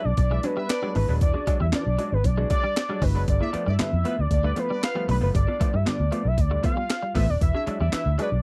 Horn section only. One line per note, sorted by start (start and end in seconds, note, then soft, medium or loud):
0.19 0.29 D4 medium
0.19 0.29 D5 medium
0.31 0.39 E4 medium
0.31 0.39 E5 medium
0.56 0.67 E4 loud
0.56 0.67 E5 loud
0.70 0.91 D4 loud
0.70 0.91 D5 loud
3.41 3.48 E4 medium
3.41 3.49 E5 loud
3.66 3.74 D4 medium
3.66 3.74 D5 medium
4.05 4.13 B3 medium
4.05 4.13 B4 medium
4.30 4.41 D4 medium
4.30 4.41 D5 medium
4.44 4.52 B3 medium
4.44 4.52 B4 medium
4.69 4.80 D4 loud
4.69 4.80 D5 loud
4.82 5.03 F4 loud
4.82 5.04 F5 loud
7.54 7.62 E4 medium
7.54 7.62 E5 medium
7.80 7.88 D4 medium
7.80 7.88 D5 medium
8.19 8.27 B3 medium
8.19 8.27 B4 medium